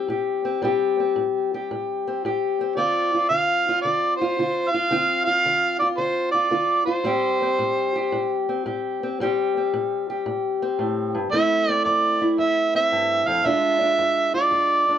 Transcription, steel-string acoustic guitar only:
Already playing: G3 C4
0.08 A2 G4
0.45 C4
0.62 A2 G3 C4 G4
1.00 C4
1.16 A2
1.54 G4
1.71 A2
2.08 C4
2.25 A2 G4
2.61 C4
2.77 D3 C4 F4
3.14 F4
3.30 D3
3.69 F4
3.85 D3
4.21 F4
4.39 D3 F4
4.74 F4
4.91 D3 C4 F4
5.27 F4
5.46 D3
5.82 F4
5.98 D3
6.35 F4
6.51 D3 F4
6.87 F4
7.04 A2 G3 C4 G4
7.42 C4
7.59 A2
7.96 G4
8.12 A2
8.49 C4
8.66 A2 G4
9.03 C4
9.20 A2 G3 C4 G4
9.57 C4
9.73 A2
10.10 G4
10.26 A2
10.62 C4
10.79 A2
11.15 G2
11.32 F2 A3 C4 E4
11.69 C4
11.86 F2
12.21 E4
12.38 F2
12.75 C4
12.92 G2
13.27 F2
13.45 E2 G#3 D4 F4
13.81 D4
13.99 E2
14.34 F4
14.51 E2
14.89 D4

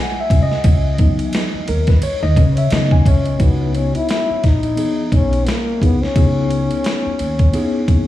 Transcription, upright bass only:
0.30 C#2
0.65 C#2
1.54 muted upright bass stroke
1.68 D#2
2.23 D#2
2.37 C#3
2.71 C#3
3.06 C#2
3.40 C#2
4.30 muted upright bass stroke
4.44 A#1
5.12 B1
5.82 C#2
6.16 C#2
7.06 muted upright bass stroke
7.20 D#2
7.89 D#2

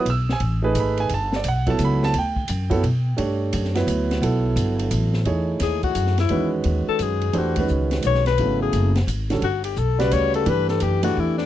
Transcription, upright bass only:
0.05 B1
0.40 A1
0.75 G#1
1.10 G1
1.45 B1
1.79 C#2
2.14 D2
2.49 F#2
2.83 B2
3.18 G2
3.53 F#2
3.87 D2
4.22 B1
4.56 G1
4.91 A1
5.25 E2
5.60 D#2
5.95 F#2
6.30 E2
6.65 D#2
6.88 muted upright bass stroke
6.99 F#2
7.34 E2
7.70 C#2
8.05 B1
8.39 G#1
8.73 F#1
9.07 G#1
9.42 G1
9.77 B1
10.12 D2
10.46 G2
10.82 F#2
11.17 E2

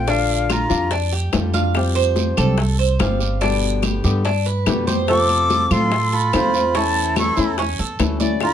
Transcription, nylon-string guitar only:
0.07 D3 G3 D4 F4
0.69 G3 D4 F4
0.91 muted nylon-string guitar stroke
1.32 D3 G3 D4 F4
1.53 G3 D4 F4
1.75 F3 G3 C4 G4
2.37 G3 C4 G4
2.58 muted nylon-string guitar stroke
2.99 F3 G3 C4 G4
3.20 G3 C4 G4
3.41 B2 D3 G3 B3 G4
4.04 D3 G3 B3 G4
4.25 muted nylon-string guitar stroke
4.66 B2 D3 G3 B3 G4
4.87 G3 B3 G4
5.08 C3 F3 A3 C4 F4
5.71 F3 A3 C4 F4
5.92 muted nylon-string guitar stroke
6.33 C3 F3 A3 C4 F4
6.54 A3 C4 F4
6.75 E3 A3 C#4 E4
7.37 A3 C#4 E4
7.58 muted nylon-string guitar stroke
7.99 E3 A3 C#4 E4
8.21 A3 C#4 E4
8.41 D3 A3 D4 F4

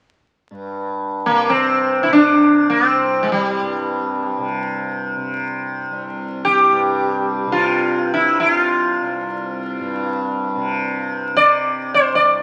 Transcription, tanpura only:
0.51 G2
1.30 C3
2.07 C3
2.84 C2
3.61 G2
4.38 C3
5.16 C3
5.91 C2
6.69 G2
7.47 C3
8.24 C3
9.02 C2
9.79 G2
10.56 C3
11.34 C3
12.12 C2

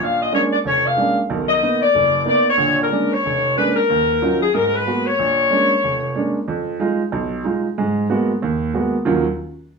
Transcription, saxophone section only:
0.02 F5
0.22 D#5
0.34 C#5
0.53 D5
0.67 C#5
0.86 F5
1.48 D#5
1.82 D5
2.29 D5
2.49 C#5
2.82 A#4
3.12 C#5
3.57 B4
3.75 A#4
4.41 G#4
4.53 A#4
4.75 B4
5.06 C#5

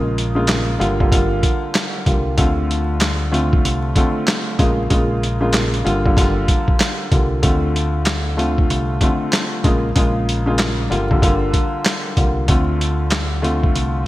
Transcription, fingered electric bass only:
Already playing: A#1
0.81 G1
2.07 C2
2.38 D2
3.65 C2
4.59 A#1
4.91 A#1
5.86 G1
7.12 C2
7.44 D2
8.70 C2
9.65 A#1
9.96 A#1
10.91 G1
12.17 C2
12.49 D2
13.75 C2

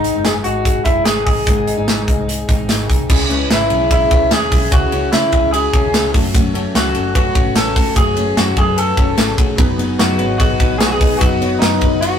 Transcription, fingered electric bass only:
Already playing: G#1
0.15 F#1
0.45 G#1
0.86 F#1
1.06 G#1
1.27 A1
1.47 G#1
1.77 G#1
2.08 C2
2.49 A1
2.69 G#1
2.90 C2
3.10 C#2
3.50 G#1
3.70 B1
4.12 C#2
4.32 D#2
4.52 B1
4.72 C#2
5.13 C#3
5.33 C#2
5.74 D#2
5.93 C#2
6.15 F#1
6.75 C#2
6.95 F#1
7.36 G#1
7.55 A1
7.76 E1
7.96 F#1
8.36 F#2
8.57 F#2
8.97 F#1
9.17 G#1
9.38 E1
9.59 F#1
10.00 F#2
10.20 G#1
10.60 A1
10.81 B1
11.01 E1
11.21 F#1
11.61 F#2
11.82 F#1

